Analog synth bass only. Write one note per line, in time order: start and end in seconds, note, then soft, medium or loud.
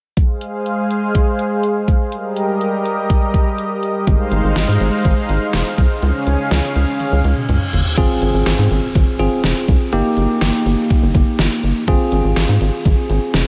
4.07 4.17 G#1 loud
4.32 4.41 G#1 loud
4.44 4.53 G#1 medium
4.56 4.65 G#1 loud
4.68 4.78 G#2 medium
4.80 4.90 G#1 loud
5.05 5.14 G#1 loud
5.29 5.39 G#1 loud
5.54 5.63 F1 medium
5.78 5.87 C2 medium
6.02 6.12 C#2 loud
6.27 6.36 C#2 medium
6.51 6.61 C#2 loud
6.76 6.85 C#2 loud
7.12 7.22 C#2 medium
7.24 7.34 C#2 loud
7.49 7.58 C#2 medium
7.73 7.82 G1 medium
7.98 8.07 G#1 loud
8.22 8.31 G#1 loud
8.34 8.43 G#1 loud
8.46 8.56 G#1 medium
8.58 8.68 G#2 loud
8.71 8.80 G#1 loud
8.95 9.04 G#1 medium
9.19 9.29 G#1 loud
9.44 9.53 F1 loud
9.68 9.78 C2 medium
9.93 10.02 G1 loud
10.17 10.26 G1 medium
10.41 10.51 G1 loud
10.66 10.75 G1 loud
11.02 11.12 G1 loud
11.15 11.24 G1 loud
11.39 11.48 G1 loud
11.63 11.73 G1 medium
11.88 11.97 G#1 loud
12.12 12.21 G#1 loud
12.24 12.34 G#1 medium
12.36 12.46 G#1 loud
12.49 12.58 G#2 loud
12.61 12.70 G#1 loud
12.85 12.95 G#1 loud
13.10 13.19 G#1 loud
13.34 13.43 F1 loud